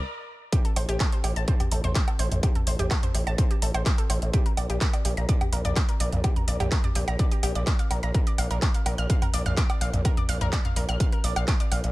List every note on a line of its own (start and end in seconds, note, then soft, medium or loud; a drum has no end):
0.52 0.62 G4 loud
0.52 kick loud
0.52 closed hi-hat medium
0.65 0.70 A4 medium
0.65 closed hi-hat soft
0.76 0.85 A1 loud
0.76 0.86 C5 medium
0.76 open hi-hat loud
0.76 low woodblock soft
0.89 0.97 A1 medium
0.89 0.98 G4 loud
0.89 closed hi-hat soft
1.00 1.12 A4 loud
1.00 kick loud
1.00 clap loud
1.00 closed hi-hat medium
1.12 1.21 C5 medium
1.12 closed hi-hat soft
1.24 1.33 A1 loud
1.24 1.30 G4 medium
1.24 open hi-hat medium
1.24 low woodblock medium
1.36 1.44 A1 medium
1.36 1.47 A5 medium
1.36 closed hi-hat soft
1.48 1.54 C5 loud
1.48 kick loud
1.48 closed hi-hat medium
1.60 1.66 G4 medium
1.60 closed hi-hat soft
1.60 mid tom medium
1.60 low woodblock soft
1.72 1.80 A1 medium
1.72 1.81 A4 medium
1.72 open hi-hat loud
1.84 1.92 A1 medium
1.84 1.93 C5 loud
1.84 closed hi-hat soft
1.84 mid tom medium
1.95 2.07 G5 medium
1.95 kick loud
1.95 clap loud
1.95 closed hi-hat medium
2.08 2.17 A4 medium
2.08 closed hi-hat soft
2.08 low woodblock medium
2.19 2.28 A1 medium
2.19 2.25 C5 medium
2.19 open hi-hat medium
2.32 2.40 A1 medium
2.32 closed hi-hat soft
2.32 mid tom medium
2.43 2.53 G4 loud
2.43 kick loud
2.43 closed hi-hat medium
2.43 low woodblock medium
2.55 2.61 A4 medium
2.55 closed hi-hat soft
2.55 mid tom medium
2.67 2.75 A1 loud
2.67 2.77 C5 medium
2.67 open hi-hat loud
2.79 2.87 A1 medium
2.79 2.88 G4 loud
2.79 closed hi-hat soft
2.79 mid tom medium
2.91 3.02 A4 loud
2.91 kick loud
2.91 clap loud
2.91 closed hi-hat medium
2.91 low woodblock medium
3.03 3.12 C5 medium
3.03 closed hi-hat soft
3.03 mid tom medium
3.14 3.23 A1 medium
3.14 3.20 G4 medium
3.14 open hi-hat medium
3.27 3.35 A1 medium
3.27 3.38 A5 medium
3.27 closed hi-hat soft
3.27 low woodblock medium
3.38 3.44 C5 loud
3.38 kick loud
3.38 closed hi-hat medium
3.51 3.56 G4 medium
3.51 closed hi-hat soft
3.62 3.71 A1 medium
3.62 3.72 A4 medium
3.62 open hi-hat loud
3.74 3.82 A1 medium
3.74 3.83 C5 loud
3.74 closed hi-hat soft
3.74 low woodblock medium
3.86 3.98 G5 medium
3.86 kick loud
3.86 clap loud
3.86 closed hi-hat medium
3.98 4.07 A4 medium
3.98 closed hi-hat soft
4.10 4.18 A1 medium
4.10 4.15 C5 medium
4.10 open hi-hat loud
4.10 low woodblock medium
4.22 4.30 A1 medium
4.22 closed hi-hat soft
4.33 4.43 G4 loud
4.33 kick loud
4.33 closed hi-hat medium
4.46 4.51 A#4 medium
4.46 closed hi-hat soft
4.57 4.66 A#1 loud
4.57 4.67 D5 medium
4.57 open hi-hat loud
4.57 low woodblock medium
4.70 4.78 A#1 medium
4.70 4.79 G4 loud
4.70 closed hi-hat soft
4.81 4.93 A#4 loud
4.81 kick loud
4.81 clap loud
4.81 closed hi-hat medium
4.93 5.02 D5 medium
4.93 closed hi-hat soft
4.93 low woodblock medium
5.05 5.14 A#1 medium
5.05 5.11 G4 medium
5.05 open hi-hat loud
5.17 5.25 A#1 medium
5.17 5.28 A#5 medium
5.17 closed hi-hat soft
5.29 5.35 D5 loud
5.29 kick loud
5.29 closed hi-hat medium
5.41 5.46 G4 medium
5.41 closed hi-hat soft
5.41 mid tom medium
5.41 low woodblock medium
5.53 5.61 A#1 medium
5.53 5.62 A#4 medium
5.53 open hi-hat loud
5.65 5.73 A#1 medium
5.65 5.74 D5 loud
5.65 closed hi-hat soft
5.65 mid tom medium
5.76 5.88 G5 medium
5.76 kick loud
5.76 clap loud
5.76 closed hi-hat medium
5.76 low woodblock medium
5.89 5.98 A#4 medium
5.89 closed hi-hat soft
6.00 6.09 A#1 medium
6.00 6.06 D5 medium
6.00 open hi-hat loud
6.12 6.21 A#1 medium
6.12 closed hi-hat soft
6.12 mid tom medium
6.24 6.34 G4 loud
6.24 kick loud
6.24 closed hi-hat medium
6.24 low woodblock medium
6.36 6.42 A#4 medium
6.36 closed hi-hat soft
6.36 mid tom medium
6.48 6.56 A#1 medium
6.48 6.57 D5 medium
6.48 open hi-hat loud
6.60 6.68 A#1 medium
6.60 6.69 G4 loud
6.60 closed hi-hat soft
6.60 mid tom medium
6.60 low woodblock medium
6.72 6.83 A#4 loud
6.72 kick loud
6.72 clap loud
6.72 closed hi-hat medium
6.84 6.93 D5 medium
6.84 closed hi-hat soft
6.84 mid tom medium
6.95 7.04 A#1 loud
6.95 7.01 G4 medium
6.95 open hi-hat medium
7.08 7.16 A#1 medium
7.08 7.19 A#5 medium
7.08 closed hi-hat soft
7.08 low woodblock medium
7.19 7.25 D5 loud
7.19 kick loud
7.19 closed hi-hat medium
7.32 7.37 G4 medium
7.32 closed hi-hat soft
7.43 7.52 A#1 loud
7.43 7.53 G4 loud
7.43 open hi-hat loud
7.43 low woodblock medium
7.55 7.63 A#1 medium
7.55 7.64 D5 medium
7.55 closed hi-hat soft
7.67 7.79 D5 medium
7.67 kick loud
7.67 clap loud
7.67 closed hi-hat medium
7.79 7.88 F5 medium
7.79 closed hi-hat soft
7.91 7.99 A#1 loud
7.91 7.96 A#4 medium
7.91 open hi-hat medium
7.91 low woodblock medium
8.03 8.11 A#1 medium
8.03 8.08 A#5 medium
8.03 closed hi-hat soft
8.14 8.24 A#4 loud
8.14 kick loud
8.14 closed hi-hat medium
8.27 8.32 D5 medium
8.27 closed hi-hat soft
8.38 8.47 A#1 medium
8.38 8.48 F5 medium
8.38 open hi-hat loud
8.38 low woodblock medium
8.51 8.59 A#1 medium
8.51 8.60 A#4 loud
8.51 closed hi-hat soft
8.62 8.74 D5 loud
8.62 kick loud
8.62 clap loud
8.62 closed hi-hat medium
8.74 8.83 F5 medium
8.74 closed hi-hat soft
8.86 8.94 A#1 medium
8.86 8.92 A#4 medium
8.86 open hi-hat medium
8.86 low woodblock medium
8.98 9.06 A#1 medium
8.98 9.09 F6 medium
8.98 closed hi-hat soft
9.10 9.16 F5 loud
9.10 kick loud
9.10 closed hi-hat medium
9.22 9.27 A#4 medium
9.22 closed hi-hat soft
9.22 mid tom medium
9.22 low woodblock medium
9.34 9.42 A#1 medium
9.34 9.43 D5 medium
9.34 open hi-hat loud
9.46 9.54 A#1 medium
9.46 9.55 F5 loud
9.46 closed hi-hat soft
9.46 mid tom medium
9.57 9.69 D6 medium
9.57 kick loud
9.57 clap loud
9.57 closed hi-hat medium
9.70 9.79 D5 medium
9.70 closed hi-hat soft
9.70 low woodblock medium
9.81 9.90 A#1 medium
9.81 9.87 F5 medium
9.81 open hi-hat medium
9.93 10.01 A#1 medium
9.93 closed hi-hat soft
9.93 mid tom medium
10.05 10.15 A#4 loud
10.05 kick loud
10.05 closed hi-hat medium
10.05 low woodblock medium
10.17 10.23 D5 medium
10.17 closed hi-hat soft
10.17 mid tom medium
10.29 10.37 A#1 medium
10.29 10.38 F5 medium
10.29 open hi-hat loud
10.41 10.49 A#1 medium
10.41 10.50 A#4 loud
10.41 closed hi-hat soft
10.41 mid tom medium
10.53 10.64 D5 loud
10.53 kick loud
10.53 clap loud
10.53 closed hi-hat medium
10.53 low woodblock medium
10.65 10.74 F5 medium
10.65 closed hi-hat soft
10.65 mid tom loud
10.76 10.85 A#1 loud
10.76 10.82 A#4 medium
10.76 open hi-hat medium
10.89 10.97 A#1 medium
10.89 11.00 F6 medium
10.89 closed hi-hat soft
10.89 low woodblock medium
11.00 11.06 F5 loud
11.00 kick loud
11.00 closed hi-hat medium
11.12 11.18 A#4 medium
11.12 closed hi-hat soft
11.24 11.33 A#1 medium
11.24 11.34 D5 medium
11.24 open hi-hat loud
11.36 11.44 A#1 medium
11.36 11.45 F5 loud
11.36 closed hi-hat soft
11.36 low woodblock medium
11.48 11.60 D6 medium
11.48 kick loud
11.48 clap loud
11.48 closed hi-hat medium
11.60 11.69 D5 medium
11.60 closed hi-hat soft
11.72 11.80 A#1 medium
11.72 11.77 F5 medium
11.72 open hi-hat medium
11.72 low woodblock medium
11.84 11.92 A#1 medium
11.84 closed hi-hat soft